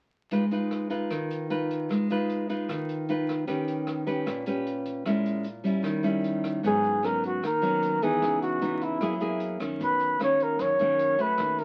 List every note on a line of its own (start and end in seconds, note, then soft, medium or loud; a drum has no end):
0.31 1.09 G#3 soft
0.31 0.43 D#4 soft
0.31 0.43 F4 soft
0.31 0.44 B4 soft
0.31 kick medium
0.31 closed hi-hat medium
0.51 0.88 D#4 soft
0.51 0.88 F4 soft
0.51 0.88 B4 medium
0.51 closed hi-hat soft
0.71 cross-stick soft
0.71 closed hi-hat soft
0.90 1.47 D#4 soft
0.90 1.47 F4 medium
0.90 1.47 B4 medium
0.90 kick soft
0.90 closed hi-hat soft
1.10 1.88 D#3 medium
1.10 kick soft
1.10 cross-stick soft
1.10 closed hi-hat medium
1.31 closed hi-hat soft
1.50 2.06 D#4 soft
1.50 2.06 F4 soft
1.50 2.07 B4 soft
1.50 closed hi-hat soft
1.70 kick soft
1.70 closed hi-hat soft
1.90 2.67 G#3 medium
1.90 kick soft
1.90 cross-stick soft
1.90 closed hi-hat medium
2.10 2.46 D#4 soft
2.10 2.47 F4 medium
2.10 2.47 B4 medium
2.10 closed hi-hat soft
2.30 closed hi-hat soft
2.49 3.05 D#4 medium
2.49 3.06 F4 soft
2.49 3.06 B4 medium
2.49 kick soft
2.49 closed hi-hat soft
2.69 3.46 D#3 medium
2.69 kick medium
2.69 cross-stick medium
2.69 closed hi-hat soft
2.89 closed hi-hat soft
3.09 3.47 D#4 soft
3.09 3.47 F4 soft
3.09 3.46 B4 medium
3.09 closed hi-hat soft
3.28 kick soft
3.28 cross-stick medium
3.28 closed hi-hat soft
3.47 4.25 D#3 medium
3.47 4.04 C#4 soft
3.47 4.04 G4 soft
3.47 4.04 B4 medium
3.47 kick medium
3.47 closed hi-hat soft
3.68 closed hi-hat soft
3.87 cross-stick medium
3.87 closed hi-hat soft
4.07 4.43 C#4 medium
4.07 4.43 G4 medium
4.07 4.44 B4 medium
4.07 kick soft
4.07 closed hi-hat soft
4.26 5.04 A#2 medium
4.26 kick medium
4.26 cross-stick medium
4.26 closed hi-hat medium
4.46 5.03 C#4 medium
4.46 5.03 G4 medium
4.46 5.03 B4 medium
4.46 closed hi-hat soft
4.67 closed hi-hat soft
4.86 kick soft
4.86 closed hi-hat soft
5.05 5.83 A#2 medium
5.05 5.45 G#3 soft
5.05 5.45 C#4 soft
5.05 5.46 E4 soft
5.05 kick soft
5.05 cross-stick medium
5.05 closed hi-hat medium
5.26 closed hi-hat soft
5.44 closed hi-hat soft
5.64 6.01 G3 soft
5.64 6.01 C#4 soft
5.64 6.01 E4 medium
5.64 kick soft
5.64 closed hi-hat soft
5.83 6.61 D#3 medium
5.83 kick medium
5.83 cross-stick medium
5.83 closed hi-hat soft
6.03 6.60 G3 medium
6.03 6.60 C#4 medium
6.03 6.60 E4 medium
6.03 closed hi-hat soft
6.24 closed hi-hat soft
6.44 kick soft
6.44 cross-stick soft
6.44 closed hi-hat soft
6.63 7.39 G#1 medium
6.63 7.41 G#2 soft
6.63 7.00 F#3 soft
6.63 7.00 B3 soft
6.63 7.01 C#4 soft
6.63 7.07 G#4 medium
6.63 kick medium
6.63 closed hi-hat soft
6.84 closed hi-hat soft
7.02 7.42 F#3 soft
7.02 7.42 B3 medium
7.02 7.43 C#4 medium
7.02 7.24 A#4 medium
7.02 cross-stick medium
7.02 closed hi-hat soft
7.23 7.43 F#4 medium
7.23 kick soft
7.23 closed hi-hat soft
7.42 8.18 D#2 medium
7.42 8.20 D#3 medium
7.42 8.04 A#4 medium
7.42 kick medium
7.42 cross-stick medium
7.42 closed hi-hat soft
7.62 7.99 F#3 medium
7.62 7.99 B3 medium
7.62 7.99 C#4 medium
7.62 closed hi-hat soft
7.83 closed hi-hat soft
8.02 8.58 E3 medium
8.02 8.59 B3 medium
8.02 8.59 D#4 medium
8.02 8.41 G#4 medium
8.02 kick soft
8.02 closed hi-hat soft
8.21 8.97 C#2 medium
8.21 8.99 C#3 soft
8.21 kick medium
8.21 cross-stick medium
8.21 closed hi-hat soft
8.41 8.84 F#4 medium
8.41 closed hi-hat soft
8.61 8.99 E3 soft
8.61 9.00 B3 soft
8.61 9.00 D#4 soft
8.61 closed hi-hat soft
8.81 9.42 E4 medium
8.81 kick soft
8.81 closed hi-hat soft
9.01 9.76 F#2 medium
9.01 9.59 F#3 soft
9.01 9.13 A#3 soft
9.01 9.13 E4 soft
9.01 9.13 G#4 medium
9.01 kick medium
9.01 cross-stick medium
9.01 closed hi-hat soft
9.20 9.57 A#3 medium
9.20 9.57 E4 medium
9.20 9.58 G#4 medium
9.20 closed hi-hat soft
9.40 closed hi-hat soft
9.60 10.16 D#3 soft
9.60 10.16 C#4 medium
9.60 kick soft
9.60 cross-stick medium
9.60 closed hi-hat soft
9.80 10.55 B1 medium
9.80 10.57 B2 medium
9.80 kick medium
9.80 closed hi-hat soft
9.84 10.19 B4 loud
10.01 closed hi-hat soft
10.19 10.76 D#3 soft
10.19 10.76 A#3 medium
10.19 10.76 C#4 medium
10.19 10.44 C#5 medium
10.19 cross-stick medium
10.19 closed hi-hat soft
10.40 10.63 A#4 medium
10.40 kick soft
10.40 closed hi-hat soft
10.59 11.34 F#2 medium
10.59 11.37 F#2 medium
10.59 11.23 C#5 medium
10.59 kick medium
10.59 cross-stick medium
10.59 closed hi-hat soft
10.79 11.16 D#3 medium
10.79 11.16 A#3 medium
10.79 11.16 C#4 medium
10.79 closed hi-hat soft
10.99 closed hi-hat soft
11.18 11.64 A3 soft
11.18 11.64 C#4 soft
11.18 11.64 F#4 medium
11.18 11.61 B4 medium
11.18 kick soft
11.18 closed hi-hat soft
11.38 11.64 D#2 medium
11.38 11.64 D#3 soft
11.38 kick medium
11.38 cross-stick medium
11.38 closed hi-hat soft
11.58 11.64 A#4 medium
11.58 closed hi-hat soft